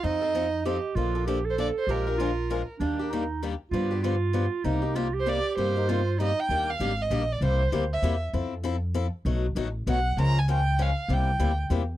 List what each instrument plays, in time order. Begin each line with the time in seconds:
0.03 upright bass F2, steel-string acoustic guitar F3 C4 D#4 A4, clarinet D#4, violin D#5
0.22 steel-string acoustic guitar C4 D#4 A4
0.35 steel-string acoustic guitar F3 C4 D#4 A4
0.65 steel-string acoustic guitar F3 C4 D#4 A4, clarinet G4
0.95 upright bass A#1, steel-string acoustic guitar D3 F3 A#3 D4 A4, clarinet F4
1.15 steel-string acoustic guitar A#3 D4 A4
1.27 steel-string acoustic guitar D3 F3 A#3 D4 A4, clarinet G4
1.45 clarinet A4
1.50 violin C5
1.58 steel-string acoustic guitar D3 F3 A#3 D4 A4, violin D5
1.79 violin C5
1.87 upright bass A#1, steel-string acoustic guitar F3 G#3 D4 F4 A#4, clarinet G4
1.91 violin A#4
2.07 steel-string acoustic guitar D4 F4 A#4
2.18 steel-string acoustic guitar F3 G#3 D4 F4 A#4, clarinet F4
2.50 steel-string acoustic guitar F3 G#3 D4 F4 A#4
2.80 upright bass D#2, steel-string acoustic guitar D#3 G3 A#3 D4 G4, clarinet D4
2.99 steel-string acoustic guitar A#3 D4 G4
3.11 steel-string acoustic guitar D#3 G3 A#3 D4 G4, clarinet D#4
3.42 steel-string acoustic guitar D#3 G3 A#3 D4 G4
3.71 upright bass G2, steel-string acoustic guitar D3 F3 B3 D4 G4, clarinet F4
3.91 steel-string acoustic guitar B3 D4 G4
4.03 steel-string acoustic guitar D3 F3 B3 D4 G4, clarinet F4
4.33 steel-string acoustic guitar D3 F3 B3 D4 G4
4.64 upright bass C2, steel-string acoustic guitar C3 G3 A#3 D#4 G4, clarinet D#4
4.82 steel-string acoustic guitar A#3 D#4 G4
4.95 steel-string acoustic guitar C3 G3 A#3 D#4 G4, clarinet F4
5.14 clarinet G4
5.20 violin C5
5.26 steel-string acoustic guitar C3 G3 A#3 D#4 G4, violin D5
5.57 upright bass G2, steel-string acoustic guitar C3 G3 A#3 D#4 G4, violin C5
5.76 steel-string acoustic guitar A#3 D#4 G4
5.89 steel-string acoustic guitar C3 G3 A#3 D#4 G4, clarinet F4
6.19 steel-string acoustic guitar C3 G3 A#3 D#4 G4, clarinet D#4, violin D#5
6.40 violin G5
6.49 upright bass D#2, steel-string acoustic guitar D#3 G3 A#3 D4 G4
6.70 violin F5
6.80 upright bass G#1, steel-string acoustic guitar D#3 G3 A#3 D4 G4
7.02 violin D#5
7.10 upright bass A#1, steel-string acoustic guitar D#3 G3 A#3 D4 G4
7.33 violin D5
7.41 upright bass C2, steel-string acoustic guitar C3 G3 A#3 E4 G4
7.45 violin C5
7.72 upright bass D2, steel-string acoustic guitar C3 G3 A#3 E4 G4
7.93 violin E5
8.02 upright bass E2, steel-string acoustic guitar C3 G3 A#3 E4 G4
8.33 upright bass F2, steel-string acoustic guitar F3 C4 E4 A4
8.64 steel-string acoustic guitar F3 C4 E4 A4
8.94 steel-string acoustic guitar F3 C4 E4 A4
9.25 upright bass B1, steel-string acoustic guitar B2 F#3 A3 D#4 F#4
9.55 upright bass A1, steel-string acoustic guitar B2 F#3 A3 D#4 F#4
9.87 upright bass B1, steel-string acoustic guitar B2 F#3 A3 D#4 F#4, violin F#5
10.17 upright bass C#2, steel-string acoustic guitar C#3 F3 G#3 C#4 F4 A#4
10.21 violin A#5
10.39 violin G#5
10.48 steel-string acoustic guitar C#3 F3 G#3 C#4 F4 A#4
10.52 violin G5
10.79 steel-string acoustic guitar C#3 F3 G#3 C#4 F4 A#4, violin F5
11.08 upright bass C2, steel-string acoustic guitar C3 G3 A#3 E4 G4
11.13 violin G5
11.39 upright bass D2, steel-string acoustic guitar C3 G3 A#3 E4 G4
11.70 upright bass E2, steel-string acoustic guitar C3 G3 A#3 E4 G4